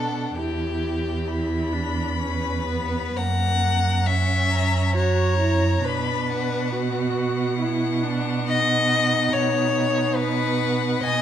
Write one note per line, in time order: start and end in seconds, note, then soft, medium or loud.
0.00 0.33 B2 medium
0.00 0.39 D4 medium
0.00 0.37 A4 medium
0.00 0.37 F#5 soft
0.36 3.13 E2 medium
0.36 1.26 E4 soft
0.36 1.73 G4 medium
0.36 1.29 G5 soft
1.27 1.74 E4 medium
1.27 3.19 B5 medium
1.73 2.22 D4 medium
2.20 2.66 C#4 medium
2.20 3.18 B4 medium
2.67 3.18 B3 medium
3.16 5.80 F#2 medium
3.16 4.08 A#3 medium
3.16 4.08 F#5 medium
3.16 4.09 A#5 soft
4.06 4.95 C#4 medium
4.06 4.95 E5 medium
4.06 4.50 F#5 medium
4.51 4.94 A#5 medium
4.94 5.38 F#4 medium
4.94 5.86 C#5 medium
4.94 5.85 A#5 medium
5.38 5.83 E4 medium
5.83 10.99 B2 medium
5.83 6.74 D4 medium
5.83 7.16 B4 medium
5.83 6.31 B5 medium
6.30 10.17 F#5 medium
6.72 7.59 F#4 medium
7.59 8.04 E4 medium
8.03 8.49 D4 medium
8.48 11.05 D#4 medium
8.48 9.35 D#5 loud
9.33 10.17 C#5 loud
10.16 11.03 B4 loud
10.16 11.05 F#5 medium
11.03 11.22 B2 medium
11.03 11.22 B3 medium
11.03 11.22 D#5 loud
11.03 11.22 G#5 medium